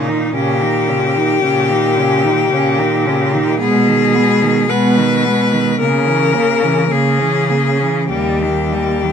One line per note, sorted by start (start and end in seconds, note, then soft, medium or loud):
0.00 0.22 A#2 medium
0.00 0.10 C#3 soft
0.00 0.35 D#4 medium
0.07 0.35 D#3 soft
0.07 0.33 D#4 soft
0.34 1.30 A#2 soft
0.34 0.63 C#3 soft
0.34 0.63 C#4 soft
0.34 3.59 G4 medium
0.61 0.91 D#3 soft
0.61 0.90 D#4 soft
0.88 1.18 C#3 soft
0.88 1.18 C#4 soft
1.16 1.43 D#3 soft
1.16 1.42 D#4 soft
1.43 2.38 A#2 medium
1.43 1.72 C#3 soft
1.43 1.71 C#4 soft
1.70 1.98 D#3 soft
1.70 2.00 D#4 soft
1.97 2.25 C#3 soft
1.97 2.25 C#4 soft
2.24 2.50 D#3 soft
2.24 2.51 D#4 soft
2.51 3.47 A#2 medium
2.51 2.79 C#3 soft
2.51 2.81 C#4 medium
2.78 3.07 D#3 soft
2.78 3.07 D#4 soft
3.06 3.35 C#3 soft
3.06 3.34 C#4 soft
3.32 3.60 D#3 soft
3.32 3.60 D#4 soft
3.60 4.57 B2 medium
3.60 3.89 G#3 soft
3.60 3.88 B3 soft
3.60 4.71 G#4 medium
3.86 4.17 D#3 soft
3.86 4.17 G#3 soft
4.15 4.44 G#3 soft
4.15 4.44 B3 soft
4.42 4.69 D#3 soft
4.42 4.69 G#3 soft
4.69 5.67 B2 medium
4.69 4.99 G#3 soft
4.69 4.97 B3 soft
4.69 5.79 B4 medium
4.95 5.27 D#3 soft
4.95 5.25 G#3 soft
5.24 5.54 G#3 soft
5.24 5.53 B3 soft
5.52 5.80 D#3 soft
5.52 5.79 G#3 soft
5.79 6.09 C#3 soft
5.79 6.78 C#3 medium
5.79 6.09 A#3 soft
5.79 6.92 A#4 medium
6.07 6.36 E3 soft
6.07 6.35 C#4 soft
6.34 6.65 C#3 soft
6.34 6.62 A#3 soft
6.61 6.91 E3 soft
6.61 6.89 C#4 soft
6.90 7.22 C#3 soft
6.90 7.97 C#3 medium
6.90 7.20 A#3 soft
6.90 8.10 G#4 medium
7.18 7.52 E3 soft
7.18 7.51 C#4 soft
7.49 7.83 C#3 soft
7.49 7.80 A#3 soft
7.78 8.11 E3 soft
7.78 8.09 C#4 soft
8.10 9.12 D#2 medium
8.10 8.43 G3 soft
8.10 8.42 A#3 soft
8.10 9.12 G4 medium
8.41 8.74 D#3 soft
8.41 8.73 G3 soft
8.72 9.04 G3 soft
8.72 9.04 A#3 soft
9.02 9.12 D#3 soft
9.02 9.12 G3 soft